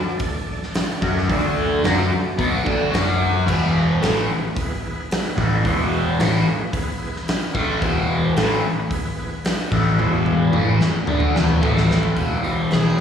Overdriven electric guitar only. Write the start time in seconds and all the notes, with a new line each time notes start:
1.02 F#3 C#4 F#4
1.29 D3 A3 D4
1.84 F#3 C#4 F#4
2.37 B2 F#3 B3
2.64 D3 A3 D4
2.91 F#3 C#4 F#4
3.46 E2 B2 E3
4.00 A2 E3 A3
5.37 A2 E3 A3
5.65 E2 B2 E3
6.19 A2 E3 A3
7.54 A2 E3 A3
7.82 E2 B2 E3
8.36 A2 E3 A3
9.71 A2 E3 A3
9.98 E2 B2 E3
10.52 A2 E3 A3
11.07 D3 A3 D4
11.35 E2 B2 E3
11.61 A2 E3 A3
12.16 E2 B2 E3
12.44 E2 B2 E3
12.71 E2 B2 E3